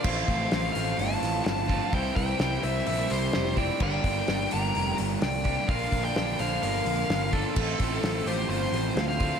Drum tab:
CC |x---------------|----------------|x---------------|----------------|
HH |--o-o-o-o-o-o-o-|o-o-o-o-o-o-o-o-|--o-o-o-o-o-o-o-|o-o-o-o-o-o-o-o-|
SD |----o-----o-o---|----o-------oo--|----o-------o---|----o-------o---|
BD |o-o-----------o-|o-o-----------o-|o-o-----------o-|o-o-----------o-|

CC |x---------------|
HH |--o-o-o-o-o-o-o-|
SD |----o-----o-oo--|
BD |o-o-----------o-|